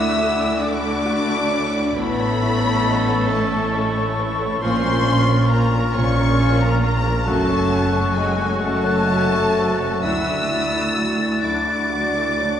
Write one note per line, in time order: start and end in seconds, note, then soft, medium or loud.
0.00 1.92 D2 medium
0.00 1.93 D2 medium
0.00 1.94 D2 medium
0.00 1.93 A3 medium
0.00 1.92 D4 medium
0.00 0.59 E4 medium
0.00 0.62 E4 medium
0.00 4.63 E4 medium
0.00 1.65 F#4 medium
0.00 1.93 F#4 medium
0.00 0.40 D5 medium
0.00 0.63 E5 loud
0.00 1.65 D6 medium
0.00 0.60 E6 loud
0.18 0.40 E5 medium
0.40 0.76 D5 medium
0.62 1.94 D4 loud
0.62 0.98 E4 medium
0.62 1.95 D5 loud
0.62 1.97 D6 loud
0.85 1.21 D5 medium
1.06 1.42 F#4 medium
1.29 1.65 D5 medium
1.51 1.74 C#5 medium
1.75 1.97 D5 medium
1.96 4.59 A1 medium
1.96 4.58 A2 medium
1.96 4.58 A3 medium
1.96 3.27 B3 loud
1.96 4.62 C#4 medium
1.96 4.59 A4 medium
1.96 3.27 B4 loud
1.96 3.30 B5 loud
1.96 7.23 C#6 medium
2.19 2.55 C#5 medium
2.41 2.77 E4 medium
2.64 3.00 C#5 medium
2.85 3.08 D#5 medium
3.08 3.44 C#5 medium
3.29 3.75 A3 medium
3.29 3.66 E4 medium
3.29 3.73 A4 medium
3.29 3.75 A5 medium
3.52 3.87 C#5 medium
3.74 4.10 A4 medium
3.97 4.32 C#5 medium
4.19 4.41 B4 medium
4.42 4.63 C#5 medium
4.61 5.79 A#1 medium
4.61 5.79 A#2 loud
4.61 7.24 A#2 medium
4.61 4.83 F3 medium
4.61 4.82 A#3 medium
4.61 4.83 A#3 medium
4.61 5.47 C#4 loud
4.61 4.82 F4 medium
4.61 7.23 F4 loud
4.61 5.51 C5 loud
4.61 5.46 C6 loud
4.83 5.06 F3 medium
4.83 5.05 A#3 medium
4.83 5.06 C#4 medium
4.83 5.06 A#4 medium
4.83 5.20 A#4 medium
5.04 5.28 F3 medium
5.04 5.27 A#3 medium
5.04 5.28 A#3 medium
5.04 5.42 C#4 medium
5.04 5.28 F4 medium
5.27 5.50 F3 medium
5.27 5.50 A#3 medium
5.27 5.50 C#4 medium
5.27 5.50 A#4 medium
5.27 5.65 A#4 medium
5.49 5.72 F3 medium
5.49 5.71 A#3 medium
5.49 5.72 A#3 medium
5.49 5.95 A#3 medium
5.49 5.71 F4 medium
5.49 5.95 A#4 medium
5.49 5.74 C5 medium
5.49 5.95 A#5 loud
5.72 5.95 F3 medium
5.72 5.95 A#3 medium
5.72 5.95 C#4 medium
5.72 5.95 A#4 medium
5.72 6.09 A#4 medium
5.93 7.11 A#1 loud
5.93 7.11 A#2 loud
5.93 6.18 F3 medium
5.93 6.16 A#3 medium
5.93 6.18 A#3 medium
5.93 6.61 C#4 loud
5.93 6.17 F4 medium
5.93 6.62 C#5 loud
5.93 6.61 C#6 loud
5.98 6.32 C#4 medium
6.17 6.40 F3 medium
6.17 6.40 A#3 medium
6.17 6.39 C#4 medium
6.17 6.39 A#4 medium
6.17 6.54 A#4 medium
6.38 6.61 F3 medium
6.38 6.59 A#3 medium
6.38 6.59 F4 medium
6.42 6.61 A#3 medium
6.42 6.75 F4 medium
6.59 6.83 F3 medium
6.59 6.83 A#3 loud
6.59 6.83 A#3 medium
6.59 6.82 C#4 medium
6.59 6.82 A#4 medium
6.59 6.82 A#4 loud
6.59 6.80 A#5 loud
6.63 6.97 A#4 medium
6.81 7.04 F3 medium
6.81 7.04 A#3 medium
6.81 7.26 A#3 medium
6.81 7.05 A#3 medium
6.81 7.04 F4 medium
6.81 7.29 A#4 loud
6.81 7.25 A#5 loud
6.85 7.06 G#4 medium
7.02 7.27 F3 medium
7.02 7.25 C#4 medium
7.02 7.25 A#4 medium
7.06 7.27 A#3 medium
7.06 7.27 A#4 medium
7.25 8.45 F#1 medium
7.25 8.45 F#2 loud
7.25 10.00 F#2 medium
7.25 7.48 F#3 medium
7.25 7.47 A3 medium
7.25 8.16 A3 loud
7.25 7.48 C#4 medium
7.25 7.47 F#4 medium
7.25 12.55 F#4 loud
7.25 8.17 A4 medium
7.25 8.15 A5 loud
7.25 9.70 C#6 medium
7.47 7.71 A3 medium
7.47 7.70 C#4 medium
7.47 7.71 A4 medium
7.47 7.84 C#5 medium
7.71 7.94 F#3 medium
7.71 7.93 A3 medium
7.71 8.07 C#4 medium
7.71 7.94 C#4 medium
7.71 7.93 F#4 medium
7.92 8.17 A3 medium
7.92 8.15 C#4 medium
7.92 8.16 A4 medium
7.92 8.29 C#5 medium
8.15 8.37 F#3 medium
8.15 8.62 G#3 medium
8.15 8.36 A3 medium
8.15 8.37 C#4 medium
8.15 8.37 F#4 medium
8.15 8.63 G#4 medium
8.15 8.40 D#5 medium
8.15 8.61 G#5 loud
8.37 8.62 A3 medium
8.37 8.60 C#4 medium
8.37 8.60 A4 medium
8.37 8.76 C#5 medium
8.58 9.86 F#1 medium
8.58 9.86 F#2 medium
8.58 8.83 A3 medium
8.58 8.83 F#4 medium
8.58 10.04 A4 loud
8.58 10.03 A5 loud
8.62 8.85 F#3 medium
8.62 10.04 A3 loud
8.62 8.99 C#4 medium
8.62 8.85 C#4 medium
8.83 9.08 A3 medium
8.83 9.07 C#4 medium
8.83 9.07 A4 medium
8.83 9.22 C#5 medium
9.07 9.30 F#3 medium
9.07 9.30 A3 medium
9.07 9.31 C#4 medium
9.07 9.46 F#4 medium
9.07 9.30 F#4 medium
9.30 9.56 A3 medium
9.30 9.55 C#4 medium
9.30 9.55 A4 medium
9.30 9.71 C#5 medium
9.55 9.80 F#3 medium
9.55 9.80 A3 medium
9.55 9.80 C#4 medium
9.55 9.79 F#4 medium
9.55 9.81 C5 medium
9.77 10.05 A3 medium
9.77 10.03 C#4 medium
9.77 10.03 A4 medium
9.77 10.04 C#5 medium
10.02 11.27 D2 medium
10.02 12.60 D2 medium
10.02 10.26 F#3 medium
10.02 10.25 D4 medium
10.02 10.26 D4 medium
10.02 11.44 E4 medium
10.02 10.25 F#4 medium
10.02 11.14 E5 loud
10.02 11.41 E6 loud
10.02 12.60 A6 medium
10.25 10.51 A3 medium
10.25 10.49 E4 medium
10.25 10.51 E4 medium
10.25 10.49 A4 medium
10.25 10.65 D5 medium
10.48 10.74 F#3 medium
10.48 10.72 D4 medium
10.48 10.74 D4 medium
10.48 10.88 E4 medium
10.48 10.72 F#4 medium
10.72 10.97 A3 medium
10.72 10.97 E4 medium
10.72 10.96 A4 medium
10.72 11.11 D5 medium
10.94 11.19 F#3 medium
10.94 11.17 D4 medium
10.94 11.19 D4 medium
10.94 11.17 F#4 medium
10.94 11.21 E5 soft
11.17 11.43 A3 medium
11.17 11.43 E4 medium
11.17 11.42 A4 medium
11.17 11.58 D5 medium
11.42 12.60 D2 medium
11.42 11.67 F#3 medium
11.42 11.67 D4 medium
11.42 12.60 D4 medium
11.42 11.81 E4 medium
11.42 11.67 F#4 medium
11.42 12.60 D5 loud
11.42 12.60 D6 loud
11.65 11.91 A3 medium
11.65 11.91 E4 medium
11.65 11.91 A4 medium
11.65 12.05 D5 soft
11.90 12.14 F#3 medium
11.90 12.14 D4 medium
11.90 12.29 F#4 medium
11.90 12.13 F#4 medium
12.14 12.39 A3 medium
12.14 12.39 E4 medium
12.14 12.40 E4 medium
12.14 12.40 A4 medium
12.14 12.54 D5 medium
12.39 12.60 F#3 medium
12.39 12.60 D4 medium
12.39 12.60 F#4 medium
12.39 12.60 C#5 soft